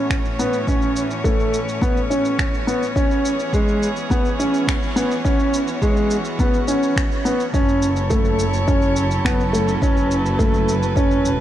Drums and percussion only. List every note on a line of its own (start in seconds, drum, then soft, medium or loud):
0.10 finger snap medium
0.10 kick medium
0.10 shaker soft
0.25 shaker soft
0.39 shaker medium
0.53 shaker soft
0.67 kick medium
0.67 shaker soft
0.82 shaker soft
0.96 shaker medium
1.11 shaker soft
1.24 kick loud
1.24 shaker soft
1.40 shaker soft
1.54 shaker medium
1.69 shaker soft
1.82 kick loud
1.82 shaker soft
1.97 shaker soft
2.11 shaker medium
2.25 shaker soft
2.39 finger snap medium
2.39 kick medium
2.39 shaker soft
2.54 shaker soft
2.68 shaker medium
2.83 shaker soft
2.96 kick loud
2.96 shaker soft
3.11 shaker soft
3.25 shaker medium
3.40 shaker soft
3.53 kick medium
3.53 shaker soft
3.68 shaker soft
3.83 shaker medium
3.96 shaker soft
4.10 kick medium
4.10 shaker soft
4.25 shaker soft
4.40 shaker medium
4.54 shaker soft
4.68 finger snap medium
4.68 kick medium
4.68 shaker soft
4.83 shaker soft
4.97 shaker medium
5.11 shaker soft
5.25 kick loud
5.25 shaker soft
5.40 shaker soft
5.54 shaker medium
5.68 shaker soft
5.82 kick loud
5.82 shaker soft
5.96 shaker soft
6.10 shaker medium
6.25 shaker soft
6.39 kick loud
6.39 shaker soft
6.54 shaker soft
6.68 shaker medium
6.83 shaker soft
6.96 finger snap medium
6.96 kick medium
6.96 shaker soft
7.12 shaker soft
7.25 shaker medium
7.40 shaker soft
7.54 kick loud
7.54 shaker soft
7.69 shaker soft
7.82 shaker medium
7.96 shaker soft
8.10 kick loud
8.10 shaker soft
8.25 shaker soft
8.39 shaker medium
8.54 shaker soft
8.68 kick loud
8.68 shaker soft
8.82 shaker soft
8.96 shaker medium
9.11 shaker soft
9.25 finger snap medium
9.25 kick loud
9.25 shaker soft
9.40 shaker soft
9.54 shaker medium
9.68 shaker soft
9.82 kick loud
9.82 shaker soft
9.97 shaker soft
10.11 shaker medium
10.26 shaker soft
10.39 kick loud
10.39 shaker soft
10.54 shaker soft
10.68 shaker medium
10.83 shaker soft
10.96 kick loud
10.96 shaker soft
11.11 shaker soft
11.25 shaker medium